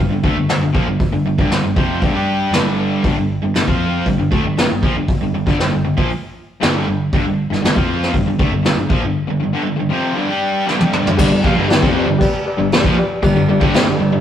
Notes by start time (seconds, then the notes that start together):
Already playing: G2
0.00 D3
0.10 G1 G2 D3
0.23 D2 D3 A3, kick
0.36 G1 G2 D3
0.48 G1 G2 D3, snare, open hi-hat
0.62 G1 G2 D3
0.73 A#1 A#2 F3, kick
0.87 G1 G2 D3
1.00 kick, open hi-hat
1.12 G1 G2 D3
1.25 G1 G2 D3
1.38 G1 G2 D3, kick
1.50 G1 G2 D3, snare, open hi-hat
1.64 G1 G2 D3
1.76 F1 F2 C3 F3, kick
2.01 G1 G2 D3, kick, open hi-hat
2.12 G2
2.16 G3 D4 G4
2.51 G1 G2 D3 G3, snare, open hi-hat
3.03 G1 G2 D3, kick, open hi-hat
3.17 G1 G2 D3
3.43 G1 G2 D3
3.55 G1 G2 D3, snare, open hi-hat
3.67 F2 F3 C4 F4, kick
4.06 G1 G2 D3, kick, open hi-hat
4.20 G1 G2 D3
4.32 D2 D3 A3, kick
4.45 G1 G2 D3
4.57 G1 G2 D3, snare, open hi-hat
4.70 G1 G2 D3
4.83 A#1 A#2 F3, kick
4.96 G1 G2 D3
5.08 kick, open hi-hat
5.21 G1 G2 D3
5.34 G1 G2 D3
5.46 G1 G2 D3, kick, snare
5.59 G1 G2 D3, snare, open hi-hat
5.71 G1 G2 D3
5.84 G1 G2 D3
5.97 A#1 A#2 F3, kick
6.10 open hi-hat
6.60 G1 G2 D3 G3, snare, open hi-hat
6.88 G1 G2 D3
7.13 G1 G2 D3, kick, open hi-hat
7.25 G1 G2 D3
7.50 G1 G2 D3, snare
7.62 G1 G2 D3, snare, open hi-hat
7.75 F2 F3 C4 F4, kick
8.03 snare
8.14 G1 G2 D3, kick, open hi-hat
8.26 G1 G2 D3
8.39 D2 D3 A3, kick
8.50 G1 G2 D3
8.63 G1 G2 D3, snare, open hi-hat
8.76 G1 G2 D3
8.80 D3
8.89 A#1 A#2 F3, kick
9.02 G1 G2 D3
9.27 G2 D3
9.40 G2 D3
9.53 G2 D3
9.64 G2 D3
9.69 G2 D3
9.76 G2 D3
9.89 F2 C3 F3
10.14 G2 D3
10.18 G2 D3
10.27 G3 D4 G4
10.31 G3
10.65 G2 D3 G3, snare
10.81 high tom
10.93 mid tom
11.07 floor tom
11.17 G1 G2 D3 G4 B4 D5, kick, crash
11.31 G1 G2 D3
11.42 A#1 A#2 F3 G4 B4 F5, kick
11.55 G1 G2 D3
11.67 G1 G2 D3 G4 B4 D5, snare, crash
11.80 F1 F2 C3 F3, kick
11.95 G4 B4 D5
12.05 G1 G2 D3
12.19 G4 B4 D5, kick, crash
12.46 G4 B4 D5
12.57 G1 G2 D3
12.72 G4 B4 D5, snare, crash
12.82 A#1 A#2 F3, kick
12.96 G4 B4 D5, muted overdriven electric guitar stroke
13.22 G1 G2 D3 G4 B4 D5, kick, crash
13.36 G1 G2 D3
13.49 G1 G2 D3 G4 B4 D5
13.60 G1 G2 D3 G3, kick
13.74 G4 B4 D5, snare, crash
13.85 G1 G2 D3
13.99 G1 G2 D3 G4 B4 D5
14.12 G1 G2 D3